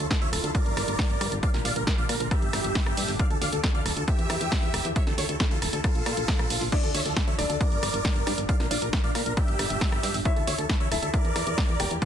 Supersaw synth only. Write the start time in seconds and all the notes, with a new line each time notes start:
0.11 A4
0.22 C#5 E5
0.33 A4
0.44 A4
0.55 A#4 D5
1.43 D5 F5
1.54 A#4
1.65 D5 F5
1.76 A#4
1.87 A#4
1.99 D5 F5
2.09 A#4
2.20 A#4
2.31 G4 E5
3.20 D5 F5
3.31 A4
3.42 D5 F5
3.53 A4
3.75 D5 F5
3.86 A4
3.97 A4
4.08 G4 E5
4.96 C#5 E5
5.07 A4
5.18 A4 C#5
5.29 A4
5.40 A4
5.51 F4 A4
5.62 A4
5.73 A4
5.84 F4 A4
6.72 C#5 E5
6.83 A4
6.94 C#5 E5
7.06 A4
7.17 A4
7.27 C#5 E5
7.38 A4
7.50 A4
7.60 A#4 D5
8.49 D5 F5
8.60 A#4
8.71 D5 F5
8.82 A#4
8.93 A#4
9.04 D5 F5
9.15 A#4
9.26 A#4
9.37 G4 E5
10.25 C#5 E5
10.36 A4
10.47 C#5 E5
10.58 A4
10.80 C#5 E5
10.91 A4
11.02 A4
11.13 A#4 D5
12.02 D5 F5